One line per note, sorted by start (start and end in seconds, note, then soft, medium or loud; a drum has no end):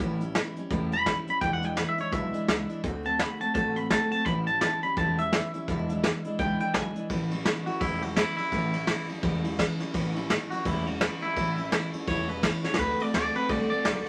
0.00 0.40 A1 medium
0.00 0.21 A2 medium
0.00 0.21 E3 medium
0.00 0.22 G3 medium
0.00 0.21 C#4 medium
0.00 0.19 E4 loud
0.20 0.35 G3 medium
0.20 0.36 C#4 medium
0.20 0.35 E4 medium
0.20 closed hi-hat medium
0.35 0.56 E3 medium
0.35 0.57 G3 medium
0.35 0.57 C#4 medium
0.35 0.55 E4 medium
0.35 snare loud
0.35 closed hi-hat medium
0.56 0.71 G3 soft
0.56 0.71 C#4 medium
0.56 0.71 E4 medium
0.56 muted upright bass stroke medium
0.56 closed hi-hat medium
0.70 1.10 E1 medium
0.70 0.92 A2 loud
0.70 0.93 E3 medium
0.70 0.93 G3 medium
0.70 0.92 C#4 loud
0.70 0.91 E4 medium
0.70 kick loud
0.70 closed hi-hat medium
0.92 1.06 G3 soft
0.92 1.07 C#4 soft
0.92 1.07 E4 medium
0.92 1.17 B5 loud
0.92 closed hi-hat medium
1.06 1.28 E3 medium
1.06 1.28 G3 medium
1.06 1.27 C#4 medium
1.06 1.26 E4 medium
1.06 kick medium
1.06 snare loud
1.06 closed hi-hat medium
1.27 1.42 G3 soft
1.27 1.43 C#4 soft
1.27 1.42 E4 soft
1.27 1.41 B5 medium
1.27 muted upright bass stroke medium
1.27 closed hi-hat medium
1.41 1.81 E1 medium
1.41 1.63 E2 medium
1.41 1.63 B2 medium
1.41 1.64 E3 medium
1.41 1.63 G#3 medium
1.41 1.62 D4 medium
1.41 1.60 E4 medium
1.41 1.53 G5 loud
1.41 kick loud
1.41 closed hi-hat medium
1.53 1.65 F#5 loud
1.62 1.74 E3 soft
1.62 1.76 G#3 soft
1.62 1.77 D4 soft
1.62 1.77 E4 soft
1.62 1.77 G5 loud
1.62 closed hi-hat medium
1.76 1.98 E3 medium
1.76 1.98 G#3 medium
1.76 1.97 D4 medium
1.76 1.96 E4 medium
1.76 1.89 F#5 medium
1.76 snare loud
1.76 closed hi-hat medium
1.89 2.00 E5 medium
1.97 2.11 E3 soft
1.97 2.12 G#3 soft
1.97 2.12 D4 medium
1.97 2.12 E4 soft
1.97 2.12 C#5 medium
1.97 muted upright bass stroke medium
1.97 closed hi-hat medium
2.12 2.31 B1 medium
2.12 2.34 E2 medium
2.12 2.34 B2 medium
2.12 2.34 E3 medium
2.12 2.34 G#3 medium
2.12 2.33 D4 medium
2.12 2.31 E4 medium
2.12 2.82 E5 loud
2.12 kick loud
2.12 closed hi-hat medium
2.32 2.46 E3 soft
2.32 2.48 G#3 medium
2.32 2.49 D4 medium
2.32 2.48 E4 soft
2.32 muted upright bass stroke medium
2.32 closed hi-hat medium
2.47 2.67 C#2 medium
2.47 2.69 E3 medium
2.47 2.70 G#3 medium
2.47 2.69 D4 medium
2.47 2.68 E4 medium
2.47 snare loud
2.47 closed hi-hat medium
2.69 2.83 E3 soft
2.69 2.84 G#3 soft
2.69 2.84 D4 medium
2.69 2.84 E4 medium
2.69 closed hi-hat medium
2.83 3.24 D2 medium
2.83 3.05 D3 medium
2.83 3.06 A3 medium
2.83 3.05 C4 medium
2.83 3.03 F#4 medium
2.83 kick loud
2.83 closed hi-hat medium
3.04 3.19 A3 soft
3.04 3.20 C4 soft
3.04 3.19 F#4 medium
3.04 3.20 A5 loud
3.04 closed hi-hat medium
3.19 3.40 D3 medium
3.19 3.41 A3 medium
3.19 3.41 C4 medium
3.19 3.39 F#4 medium
3.19 3.40 B5 medium
3.19 snare loud
3.19 closed hi-hat medium
3.40 3.54 A3 soft
3.40 3.54 C4 medium
3.40 3.55 F#4 medium
3.40 3.53 A5 medium
3.40 muted upright bass stroke medium
3.40 closed hi-hat medium
3.54 3.95 A1 medium
3.54 3.76 D3 medium
3.54 3.76 A3 medium
3.54 3.75 C4 medium
3.54 3.74 F#4 medium
3.54 3.76 A5 medium
3.54 kick loud
3.54 closed hi-hat loud
3.75 3.89 A3 soft
3.75 3.90 C4 medium
3.75 3.90 F#4 medium
3.75 3.90 B5 loud
3.75 closed hi-hat medium
3.89 4.11 D3 medium
3.89 4.12 A3 medium
3.89 4.11 C4 medium
3.89 4.09 F#4 medium
3.89 4.11 A5 medium
3.89 kick medium
3.89 snare loud
3.89 closed hi-hat loud
4.10 4.26 A3 soft
4.10 4.26 C4 soft
4.10 4.26 F#4 medium
4.10 4.25 A5 loud
4.10 muted upright bass stroke medium
4.10 closed hi-hat medium
4.25 4.66 A1 medium
4.25 4.47 A2 medium
4.25 4.47 E3 medium
4.25 4.48 G3 medium
4.25 4.47 C#4 medium
4.25 4.45 E4 medium
4.25 4.46 B5 loud
4.25 kick loud
4.25 closed hi-hat medium
4.46 4.60 G3 soft
4.46 4.62 C#4 soft
4.46 4.61 E4 medium
4.46 4.60 A5 loud
4.46 closed hi-hat medium
4.60 4.82 E3 medium
4.60 4.83 G3 medium
4.60 4.83 C#4 medium
4.60 4.81 E4 medium
4.60 4.82 A5 medium
4.60 snare loud
4.60 closed hi-hat medium
4.82 4.97 G3 soft
4.82 4.97 C#4 medium
4.82 4.97 E4 medium
4.82 4.97 B5 medium
4.82 muted upright bass stroke medium
4.82 closed hi-hat medium
4.96 5.37 E1 medium
4.96 5.18 A2 medium
4.96 5.19 E3 medium
4.96 5.19 G3 medium
4.96 5.18 C#4 medium
4.96 5.17 E4 loud
4.96 5.18 A5 medium
4.96 kick loud
4.96 closed hi-hat medium
5.18 5.32 G3 soft
5.18 5.33 C#4 soft
5.18 5.33 E4 soft
5.18 6.22 E5 loud
5.18 closed hi-hat medium
5.32 5.54 E3 medium
5.32 5.54 G3 medium
5.32 5.54 C#4 medium
5.32 5.52 E4 medium
5.32 snare loud
5.32 closed hi-hat medium
5.54 5.69 G3 soft
5.54 5.69 C#4 medium
5.54 5.68 E4 medium
5.54 muted upright bass stroke medium
5.54 closed hi-hat medium
5.68 6.08 E1 medium
5.68 5.89 E2 medium
5.68 5.90 B2 medium
5.68 5.90 E3 medium
5.68 5.90 G#3 medium
5.68 5.90 D4 medium
5.68 5.88 E4 loud
5.68 kick loud
5.68 closed hi-hat medium
5.89 6.02 E3 soft
5.89 6.04 G#3 medium
5.89 6.05 D4 medium
5.89 6.04 E4 medium
5.89 closed hi-hat medium
6.04 6.25 E3 medium
6.04 6.26 G#3 medium
6.04 6.25 D4 medium
6.04 6.23 E4 medium
6.04 snare loud
6.04 closed hi-hat medium
6.25 6.39 E3 soft
6.25 6.40 G#3 medium
6.25 6.40 D4 medium
6.25 6.39 E4 medium
6.25 muted upright bass stroke medium
6.25 closed hi-hat medium
6.39 6.57 C#2 medium
6.39 6.61 E2 medium
6.39 6.61 B2 medium
6.39 6.61 E3 medium
6.39 6.61 G#3 medium
6.39 6.60 D4 medium
6.39 6.58 E4 loud
6.39 6.59 G5 medium
6.39 kick loud
6.39 closed hi-hat medium
6.60 6.72 E3 soft
6.60 6.74 G#3 soft
6.60 6.75 D4 medium
6.60 6.74 E4 medium
6.60 6.74 G5 medium
6.60 closed hi-hat medium
6.74 6.93 B1 medium
6.74 6.96 E3 medium
6.74 6.96 G#3 medium
6.74 6.95 D4 medium
6.74 6.93 E4 medium
6.74 7.09 G#5 loud
6.74 kick medium
6.74 snare loud
6.74 closed hi-hat medium
6.95 7.09 E3 soft
6.95 7.10 G#3 soft
6.95 7.11 D4 soft
6.95 7.10 E4 medium
6.95 closed hi-hat medium
7.09 7.50 A1 medium
7.09 7.31 A2 medium
7.09 7.32 E3 medium
7.09 7.32 G3 medium
7.09 7.31 C#4 medium
7.09 7.29 E4 medium
7.09 kick loud
7.09 ride medium
7.30 7.45 G3 medium
7.30 7.46 C#4 medium
7.30 7.45 E4 medium
7.30 ride medium
7.45 7.67 E3 medium
7.45 7.67 G3 medium
7.45 7.67 C#4 medium
7.45 7.65 E4 medium
7.45 snare loud
7.45 ride medium
7.66 7.81 G3 soft
7.66 7.82 C#4 soft
7.66 7.81 E4 medium
7.66 7.81 F#4 medium
7.66 muted upright bass stroke medium
7.66 ride medium
7.80 8.21 E1 medium
7.80 8.02 A2 medium
7.80 8.03 E3 medium
7.80 8.03 G3 medium
7.80 8.02 C#4 medium
7.80 8.02 E4 medium
7.80 8.00 E4 medium
7.80 kick loud
7.80 ride medium
8.01 8.15 G3 soft
8.01 8.16 C#4 soft
8.01 8.16 E4 medium
8.01 8.16 F#4 medium
8.01 ride medium
8.15 8.37 E3 medium
8.15 8.38 G3 medium
8.15 8.37 C#4 medium
8.15 8.36 E4 medium
8.15 8.35 E4 medium
8.15 snare loud
8.15 ride medium
8.36 8.52 G3 soft
8.36 8.53 C#4 soft
8.36 8.52 E4 medium
8.36 9.07 E4 loud
8.36 muted upright bass stroke medium
8.36 ride medium
8.52 8.92 A1 medium
8.52 8.73 A2 medium
8.52 8.74 E3 medium
8.52 8.74 G3 medium
8.52 8.74 C#4 medium
8.52 8.71 E4 medium
8.52 kick loud
8.52 ride medium
8.73 8.87 G3 soft
8.73 8.88 C#4 medium
8.73 8.88 E4 medium
8.73 ride medium
8.87 9.09 E3 medium
8.87 9.10 G3 medium
8.87 9.09 C#4 medium
8.87 9.07 E4 medium
8.87 snare loud
8.87 ride medium
9.08 9.22 G3 soft
9.08 9.23 C#4 medium
9.08 9.23 E4 medium
9.08 muted upright bass stroke medium
9.08 ride medium
9.22 9.63 E1 medium
9.22 9.44 A2 medium
9.22 9.45 E3 medium
9.22 9.45 G3 loud
9.22 9.44 C#4 loud
9.22 9.42 E4 loud
9.22 kick loud
9.22 ride medium
9.44 9.58 G3 medium
9.44 9.59 C#4 medium
9.44 9.59 E4 medium
9.44 ride medium
9.58 9.80 E3 medium
9.58 9.80 G3 medium
9.58 9.80 C#4 medium
9.58 9.78 E4 medium
9.58 kick medium
9.58 snare loud
9.58 ride medium
9.79 9.93 G3 medium
9.79 9.94 C#4 medium
9.79 9.94 E4 medium
9.79 muted upright bass stroke medium
9.79 snare soft
9.79 ride medium
9.93 10.34 A1 medium
9.93 10.15 A2 medium
9.93 10.16 E3 medium
9.93 10.16 G3 medium
9.93 10.15 C#4 medium
9.93 10.13 E4 medium
9.93 kick loud
9.93 ride medium
10.14 10.29 G3 medium
10.14 10.30 C#4 medium
10.14 10.30 E4 medium
10.14 ride medium
10.29 10.51 E3 medium
10.29 10.52 G3 medium
10.29 10.51 C#4 medium
10.29 10.49 E4 medium
10.29 snare loud
10.29 ride medium
10.50 10.65 G3 soft
10.50 10.66 C#4 soft
10.50 10.65 E4 soft
10.50 10.66 F#4 medium
10.50 muted upright bass stroke medium
10.50 ride medium
10.65 11.05 E1 medium
10.65 10.87 A2 medium
10.65 10.87 E3 medium
10.65 10.87 G3 medium
10.65 10.87 C#4 loud
10.65 10.87 E4 medium
10.65 10.85 E4 loud
10.65 kick loud
10.65 ride medium
10.86 11.01 G3 medium
10.86 11.02 C#4 medium
10.86 11.01 E4 medium
10.86 11.01 F#4 medium
10.86 ride medium
11.00 11.22 E3 medium
11.00 11.23 G3 medium
11.00 11.22 C#4 medium
11.00 11.21 E4 loud
11.00 11.20 E4 medium
11.00 snare loud
11.00 ride medium
11.21 11.36 G3 soft
11.21 11.36 C#4 soft
11.21 11.36 E4 medium
11.21 11.91 E4 loud
11.21 muted upright bass stroke medium
11.21 ride medium
11.36 11.76 A1 loud
11.36 11.58 A2 medium
11.36 11.58 E3 medium
11.36 11.58 G3 medium
11.36 11.57 C#4 medium
11.36 11.56 E4 medium
11.36 kick loud
11.36 ride medium
11.57 11.71 G3 soft
11.57 11.72 C#4 soft
11.57 11.72 E4 medium
11.57 ride medium
11.71 11.93 E3 medium
11.71 11.94 G3 medium
11.71 11.94 C#4 medium
11.71 11.91 E4 medium
11.71 snare loud
11.71 ride medium
11.93 12.07 G3 soft
11.93 12.08 C#4 medium
11.93 12.07 E4 medium
11.93 muted upright bass stroke medium
11.93 ride medium
12.07 12.47 E1 medium
12.07 12.29 A2 medium
12.07 12.29 E3 medium
12.07 12.29 G3 medium
12.07 12.28 C#4 medium
12.07 12.26 E4 loud
12.07 12.29 C#5 medium
12.07 kick loud
12.07 ride medium
12.28 12.42 G3 soft
12.28 12.43 C#4 soft
12.28 12.43 E4 medium
12.28 12.44 B4 medium
12.28 ride medium
12.42 12.64 E3 medium
12.42 12.64 G3 medium
12.42 12.64 C#4 medium
12.42 12.62 E4 medium
12.42 12.64 C#5 loud
12.42 kick medium
12.42 snare loud
12.42 ride medium
12.63 12.78 G3 soft
12.63 12.79 C#4 medium
12.63 12.78 E4 medium
12.63 12.79 C#5 medium
12.63 muted upright bass stroke medium
12.63 snare medium
12.74 12.99 D3 medium
12.74 snare medium
12.78 12.93 D2 medium
12.78 13.00 A3 medium
12.78 12.99 C4 medium
12.78 12.97 F#4 medium
12.78 13.02 B4 loud
12.78 kick loud
12.78 ride medium
12.98 13.13 A3 soft
12.98 13.14 C4 soft
12.98 13.13 F#4 medium
12.98 13.15 D5 loud
12.98 muted upright bass stroke medium
12.98 ride medium
13.13 13.32 D2 medium
13.13 13.35 D3 medium
13.13 13.35 A3 medium
13.13 13.34 C4 medium
13.13 13.32 F#4 medium
13.13 13.35 D5 loud
13.13 snare loud
13.13 ride medium
13.34 13.48 A3 soft
13.34 13.49 C4 medium
13.34 13.49 F#4 medium
13.34 13.50 B4 loud
13.34 muted upright bass stroke medium
13.34 ride medium
13.48 13.68 C2 medium
13.48 13.70 D3 medium
13.48 13.71 A3 medium
13.48 13.70 C4 loud
13.48 13.68 F#4 medium
13.48 13.69 D5 medium
13.48 kick loud
13.48 ride medium
13.69 13.84 A3 soft
13.69 13.85 C4 soft
13.69 13.85 F#4 medium
13.69 14.09 D5 loud
13.69 muted upright bass stroke medium
13.69 ride medium
13.84 14.03 B1 medium
13.84 14.06 D3 medium
13.84 14.07 A3 medium
13.84 14.06 C4 medium
13.84 14.04 F#4 medium
13.84 snare loud
13.84 ride medium
14.05 14.09 F#4 medium